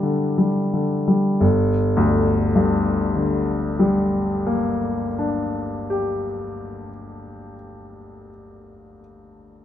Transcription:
0.00 1.37 G2 soft
0.00 0.03 D3 soft
0.00 0.60 D3 soft
0.00 0.38 G3 soft
0.00 1.46 D4 soft
0.00 1.45 E4 soft
0.00 0.70 G4 medium
0.00 0.73 G5 medium
0.38 0.95 G3 soft
0.73 1.29 D3 soft
1.08 1.41 G3 soft
1.40 4.49 G1 medium
1.97 5.06 D2 soft
2.55 5.64 G2 soft
3.15 6.24 D3 soft
3.79 6.88 G3 soft
4.47 7.55 A#3 soft
5.18 8.27 D4 soft
5.90 8.99 G4 soft

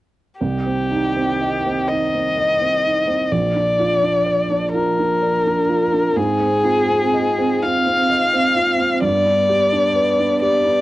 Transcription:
0.41 3.28 C2 soft
0.41 3.35 D#3 soft
0.41 1.90 G4 soft
0.66 1.05 C4 soft
0.90 1.30 D#4 soft
1.16 1.55 C4 soft
1.41 1.80 D#5 soft
1.66 2.04 C4 soft
1.89 2.28 D#4 soft
1.89 3.33 D#5 medium
2.14 2.52 C4 soft
2.38 2.75 D#5 soft
2.61 2.98 C4 soft
2.84 3.22 D#4 soft
3.07 3.31 C4 soft
3.31 6.13 A#1 soft
3.31 6.18 F3 soft
3.31 4.72 D5 medium
3.55 3.93 D4 soft
3.79 4.17 F4 soft
4.03 4.41 D4 soft
4.26 4.65 D5 soft
4.50 4.89 D4 soft
4.73 5.12 F4 soft
4.73 6.17 A#4 medium
4.99 5.37 D4 soft
5.22 5.60 D5 soft
5.46 5.83 D4 soft
5.69 6.07 F4 soft
5.92 6.17 D4 soft
6.16 8.99 G#2 soft
6.16 9.06 C4 soft
6.16 7.64 G#4 medium
6.40 6.80 C4 soft
6.64 7.04 F4 soft
6.89 7.29 C4 soft
7.14 7.53 D#5 soft
7.38 7.77 C4 soft
7.63 8.01 F4 soft
7.63 9.03 F5 medium
7.86 8.24 C4 soft
8.10 8.47 D#5 soft
8.33 8.71 C4 soft
8.56 8.94 F4 soft
8.80 9.03 C4 soft
9.02 10.81 G2 soft
9.02 10.81 B3 soft
9.02 10.40 D5 medium
9.25 9.63 D4 soft
9.49 9.86 G4 soft
9.72 10.09 D4 soft
9.95 10.33 B4 soft
10.19 10.56 D4 soft
10.42 10.79 G4 soft
10.42 10.81 D5 medium
10.65 10.81 D4 soft

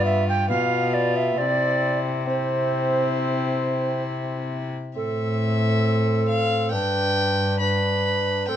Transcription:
0.00 0.51 G2 medium
0.00 0.32 B3 medium
0.00 0.49 F4 medium
0.05 0.27 E5 medium
0.29 0.49 G5 medium
0.49 1.37 B2 medium
0.49 1.39 B3 medium
0.49 1.42 F4 medium
0.49 0.95 F5 medium
0.94 1.18 D5 medium
1.16 1.39 E5 medium
1.37 4.71 C3 medium
1.37 2.26 C4 medium
1.37 2.28 E4 medium
1.37 1.99 D5 loud
2.27 4.59 C4 medium
2.27 4.72 E4 medium
2.27 4.03 C5 medium
4.95 6.74 A2 medium
4.95 6.74 C4 medium
4.95 6.74 A4 medium
4.95 6.25 E5 medium
6.29 6.71 F5 medium
6.72 8.50 G2 medium
6.72 7.59 D4 medium
6.72 7.60 B4 medium
6.72 7.58 G5 medium
7.60 8.46 D4 medium
7.60 8.50 B4 medium
7.60 8.46 B5 medium
8.48 8.56 A2 medium
8.48 8.56 C4 medium
8.48 8.56 A4 medium
8.48 8.56 G5 medium

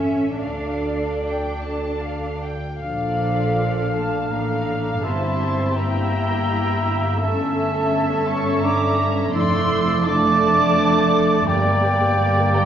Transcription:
0.00 0.42 A1 soft
0.00 0.42 C#4 soft
0.00 0.41 A4 soft
0.00 0.40 E5 soft
0.00 0.41 E5 soft
0.42 2.57 D2 soft
0.42 2.39 D4 soft
0.42 2.57 A4 soft
0.42 2.61 D5 soft
0.42 1.14 F5 soft
1.24 1.61 G5 soft
1.63 2.03 A5 soft
2.04 2.43 F5 soft
2.44 2.83 G5 soft
2.81 4.27 A#1 soft
2.81 4.27 A#2 soft
2.81 3.90 F3 soft
2.81 4.27 D4 soft
2.81 5.01 D4 soft
2.81 4.27 A4 soft
2.81 3.90 D5 soft
2.81 3.95 F5 medium
2.81 4.27 F5 soft
2.81 5.05 F5 soft
3.93 4.31 A3 soft
3.93 4.29 F5 soft
3.93 4.32 A5 medium
4.31 5.03 A1 soft
4.31 5.03 A2 soft
4.31 5.05 A#3 medium
4.31 5.03 D4 soft
4.31 5.03 A4 soft
4.31 5.03 F5 medium
4.31 5.03 F5 soft
4.31 5.03 A#5 medium
5.04 7.18 G1 soft
5.04 7.18 G2 soft
5.04 5.78 C4 medium
5.04 7.18 E4 soft
5.04 5.76 E4 soft
5.04 5.77 G4 soft
5.04 9.07 E5 soft
5.04 5.76 E5 soft
5.04 5.77 A5 medium
5.04 5.78 C6 medium
5.76 7.22 A#3 medium
5.76 7.19 E4 soft
5.76 7.20 G4 soft
5.76 7.19 E5 soft
5.76 7.22 G5 medium
5.76 7.22 A#5 medium
7.22 9.31 G1 soft
7.22 9.31 G2 soft
7.22 8.27 A3 medium
7.22 9.04 C#4 medium
7.22 9.32 C#4 medium
7.22 9.35 A4 soft
7.22 9.31 E5 soft
7.22 8.26 E5 medium
7.22 8.29 A5 medium
8.26 8.62 C#4 medium
8.26 8.63 A5 medium
8.26 8.62 C#6 medium
8.63 9.35 D4 medium
8.63 9.36 A#5 medium
8.63 9.09 D6 medium
9.35 11.44 F1 medium
9.35 11.44 F2 medium
9.35 10.05 A3 medium
9.35 11.44 A3 medium
9.35 10.06 E4 medium
9.35 10.05 A4 medium
9.35 11.44 D5 medium
9.35 10.05 D5 medium
9.35 10.04 C6 medium
9.35 10.08 E6 loud
10.06 11.45 A3 medium
10.06 11.30 D4 loud
10.06 11.45 A4 medium
10.06 11.45 D5 medium
10.06 11.48 A5 medium
10.06 11.49 D6 medium
11.47 12.65 G1 medium
11.47 12.65 G2 medium
11.47 12.53 G3 medium
11.47 11.64 G3 medium
11.47 12.65 A#3 medium
11.47 11.65 G4 medium
11.47 11.65 A#4 soft
11.47 12.65 D5 medium
11.47 12.53 D5 medium
11.47 12.56 G5 medium
11.65 11.84 A#3 medium
11.65 11.84 A#4 medium
11.65 11.84 D5 soft
11.83 12.01 G3 medium
11.83 12.01 G4 medium
11.83 12.02 A#4 medium
12.01 12.19 A#3 soft
12.01 12.19 A#4 soft
12.01 12.19 D5 soft
12.19 12.36 G3 medium
12.19 12.36 G4 medium
12.19 12.36 A#4 medium
12.37 12.55 A#3 soft
12.37 12.55 A#4 soft
12.37 12.55 D5 medium
12.54 12.65 G3 medium
12.54 12.65 A#3 medium
12.54 12.65 G4 medium
12.54 12.65 A#4 medium
12.54 12.65 G5 medium
12.54 12.65 A#5 medium

